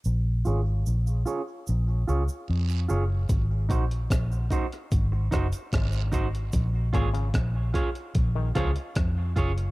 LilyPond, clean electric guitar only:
\new Staff \with { instrumentName = "Clean electric guitar" } { \time 4/4 \key bes \minor \tempo 4 = 74 r8 <f' aes' des''>8 r8 <f' aes' des''>8 r8 <f' aes' des''>8 r8 <f' aes' des''>8 | r8 <ees' ges' c''>8 r8 <ees' ges' c''>8 r8 <ees' ges' c''>8 r8 <ees' ges' c''>8 | r8 <f' aes' des''>8 r8 <f' aes' des''>8 r8 <f' aes' des''>8 r8 <f' aes' des''>8 | }